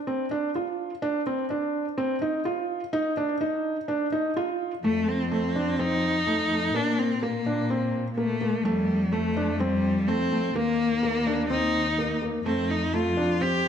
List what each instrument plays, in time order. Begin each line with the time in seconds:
0.07 felt piano C4
0.31 felt piano D4
0.55 felt piano F4
1.02 felt piano D4
1.27 felt piano C4
1.50 felt piano D4
1.98 felt piano C4
2.22 felt piano D#4
2.45 felt piano F4
2.93 felt piano D#4
3.17 felt piano D4
3.41 felt piano D#4
3.88 felt piano D4
4.12 felt piano D#4
4.36 felt piano F4
4.84 cello section F2, cello A3, felt piano A3
5.08 cello C4
5.31 felt piano A3, cello C4
5.56 felt piano D4
5.79 felt piano C4, cello D#4
6.27 felt piano A3
6.51 felt piano A3
6.74 cello section A#2, felt piano A#3, cello D4
6.99 cello C4
7.22 felt piano A#3, cello A#3
7.46 felt piano D4
7.70 felt piano C4
8.17 cello A3, felt piano A#3
8.41 felt piano A#3
8.64 cello section F2, cello G3, felt piano A3
9.12 cello A3, felt piano A3
9.37 felt piano D4
9.60 cello G3, felt piano C4
10.08 felt piano A3, cello C4
10.32 felt piano A3
10.55 cello section D#2, cello A#3, felt piano A#3
11.03 felt piano A#3
11.27 felt piano D4
11.50 felt piano C4, cello D#4
11.98 felt piano A#3
12.22 felt piano A#3
12.46 cello section F2, felt piano A3, cello C4
12.70 cello D#4
12.94 felt piano A3, cello F4
13.17 felt piano D4
13.41 felt piano C4, cello G4